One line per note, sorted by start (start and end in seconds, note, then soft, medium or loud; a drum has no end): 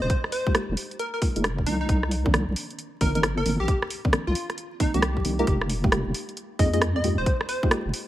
0.02 0.09 D#1 loud
0.02 0.21 C5 loud
0.10 kick loud
0.10 closed hi-hat medium
0.24 cross-stick medium
0.32 0.53 C5 loud
0.32 open hi-hat loud
0.47 0.53 G#3 medium
0.47 0.53 A#3 medium
0.47 0.53 D#4 medium
0.47 0.53 F4 medium
0.47 0.53 G4 loud
0.47 kick loud
0.55 0.66 G#3 medium
0.55 0.66 A#3 medium
0.55 0.66 D#4 medium
0.55 0.66 F4 medium
0.55 0.66 G4 loud
0.55 cross-stick loud
0.55 closed hi-hat medium
0.69 0.76 F1 medium
0.77 open hi-hat loud
0.91 closed hi-hat soft
0.99 1.09 A#4 medium
0.99 closed hi-hat medium
1.14 1.19 A#4 medium
1.22 1.33 G#3 medium
1.22 1.33 A#3 medium
1.22 1.33 D#4 medium
1.22 1.33 F4 medium
1.22 1.33 G#4 loud
1.22 kick medium
1.22 open hi-hat loud
1.36 1.65 F1 medium
1.36 1.48 G#3 medium
1.36 1.48 A#3 medium
1.36 1.48 D#4 medium
1.36 1.48 F4 medium
1.36 1.48 G#4 loud
1.36 closed hi-hat medium
1.44 cross-stick loud
1.44 closed hi-hat medium
1.58 kick medium
1.67 1.87 C2 medium
1.67 1.78 D#3 medium
1.67 1.78 F3 medium
1.67 1.78 A#3 medium
1.67 1.78 C4 medium
1.67 1.78 D4 medium
1.67 1.78 D#4 medium
1.67 open hi-hat loud
1.81 2.26 D#4 loud
1.89 2.45 C2 medium
1.89 kick loud
1.89 closed hi-hat medium
2.03 cross-stick medium
2.11 open hi-hat loud
2.26 2.32 D#3 medium
2.26 2.32 F3 medium
2.26 2.32 A#3 medium
2.26 2.32 C4 medium
2.26 2.32 D4 loud
2.26 kick loud
2.34 2.45 D#3 medium
2.34 2.45 F3 medium
2.34 2.45 A#3 medium
2.34 2.45 C4 medium
2.34 2.45 D4 loud
2.34 cross-stick loud
2.34 closed hi-hat medium
2.48 2.55 C2 medium
2.56 open hi-hat loud
2.70 closed hi-hat soft
2.79 closed hi-hat medium
3.01 3.44 G1 loud
3.01 3.12 D#3 medium
3.01 3.12 F3 medium
3.01 3.12 A#3 medium
3.01 3.12 C4 medium
3.01 3.12 D#4 loud
3.01 3.10 A#4 medium
3.01 kick medium
3.01 open hi-hat loud
3.15 3.27 D#3 medium
3.15 3.27 F3 medium
3.15 3.27 A#3 medium
3.15 3.27 C4 medium
3.15 3.27 D#4 loud
3.15 3.20 A#4 medium
3.15 closed hi-hat medium
3.23 cross-stick loud
3.23 closed hi-hat medium
3.38 3.56 A#4 medium
3.46 3.58 G1 loud
3.46 3.57 D#3 medium
3.46 3.57 F3 medium
3.46 3.57 A#3 medium
3.46 3.57 C4 medium
3.46 3.57 D4 medium
3.46 open hi-hat loud
3.60 3.67 A#1 loud
3.60 3.79 G4 loud
3.68 kick loud
3.68 closed hi-hat medium
3.82 cross-stick medium
3.90 open hi-hat loud
4.05 4.11 D#3 medium
4.05 4.11 F3 medium
4.05 4.11 A#3 medium
4.05 4.11 C4 medium
4.05 4.11 D4 loud
4.05 kick loud
4.13 4.24 D#3 medium
4.13 4.24 F3 medium
4.13 4.24 A#3 medium
4.13 4.24 C4 medium
4.13 4.24 D4 loud
4.13 cross-stick loud
4.13 closed hi-hat medium
4.27 4.34 C2 medium
4.27 4.46 F4 medium
4.35 open hi-hat loud
4.50 cross-stick medium
4.50 closed hi-hat soft
4.58 closed hi-hat medium
4.80 4.91 D#3 medium
4.80 4.91 F3 medium
4.80 4.91 A#3 medium
4.80 4.91 C4 medium
4.80 4.92 D#4 medium
4.80 4.91 D#4 medium
4.80 kick loud
4.80 open hi-hat loud
4.94 5.23 C2 loud
4.94 5.01 D#3 medium
4.94 5.01 F3 medium
4.94 5.01 A#3 medium
4.94 5.01 C4 medium
4.94 5.01 D4 loud
4.94 5.36 G4 medium
4.94 closed hi-hat medium
5.02 cross-stick loud
5.02 closed hi-hat medium
5.17 kick medium
5.25 5.45 C2 medium
5.25 5.37 D#3 medium
5.25 5.37 F3 medium
5.25 5.37 A#3 medium
5.25 5.37 C4 medium
5.25 5.37 D#4 medium
5.25 open hi-hat loud
5.39 5.81 G#3 medium
5.39 5.81 A#3 medium
5.39 5.81 D#4 medium
5.39 5.81 F4 medium
5.39 5.44 G4 medium
5.39 5.81 A#4 loud
5.39 closed hi-hat soft
5.47 6.03 F1 loud
5.47 5.56 G4 medium
5.47 kick loud
5.47 closed hi-hat medium
5.61 cross-stick medium
5.70 open hi-hat loud
5.84 5.90 G#3 medium
5.84 5.90 A#3 medium
5.84 5.90 D#4 medium
5.84 5.90 F4 medium
5.84 5.90 G4 loud
5.84 kick loud
5.92 6.03 G#3 medium
5.92 6.03 A#3 medium
5.92 6.03 D#4 medium
5.92 6.03 F4 medium
5.92 6.03 G4 loud
5.92 cross-stick loud
5.92 closed hi-hat medium
6.06 6.13 F1 medium
6.14 open hi-hat loud
6.29 closed hi-hat soft
6.37 closed hi-hat medium
6.59 7.02 F2 loud
6.59 6.70 G#3 medium
6.59 6.70 A#3 medium
6.59 6.70 D#4 medium
6.59 6.70 F4 medium
6.59 6.70 G#4 medium
6.59 6.68 D#5 medium
6.59 kick loud
6.59 open hi-hat loud
6.74 6.85 G#3 medium
6.74 6.85 A#3 medium
6.74 6.85 D#4 medium
6.74 6.85 F4 medium
6.74 6.85 G#4 loud
6.74 6.79 D#5 medium
6.74 closed hi-hat medium
6.82 cross-stick loud
6.82 closed hi-hat medium
6.96 7.15 D#5 medium
7.04 7.16 F2 loud
7.04 7.15 G#3 medium
7.04 7.15 A#3 medium
7.04 7.15 D#4 medium
7.04 7.15 F4 medium
7.04 7.15 G4 medium
7.04 open hi-hat loud
7.18 7.25 D#1 loud
7.18 7.37 C5 loud
7.26 kick loud
7.26 closed hi-hat medium
7.41 cross-stick medium
7.49 7.69 C5 medium
7.49 open hi-hat loud
7.63 7.69 G#3 medium
7.63 7.69 A#3 medium
7.63 7.69 D#4 medium
7.63 7.69 F4 medium
7.63 7.69 G4 medium
7.63 kick loud
7.71 7.82 G#3 medium
7.71 7.82 A#3 medium
7.71 7.82 D#4 medium
7.71 7.82 F4 medium
7.71 7.82 G4 loud
7.71 cross-stick loud
7.71 closed hi-hat medium
7.86 7.92 F1 medium
7.94 open hi-hat loud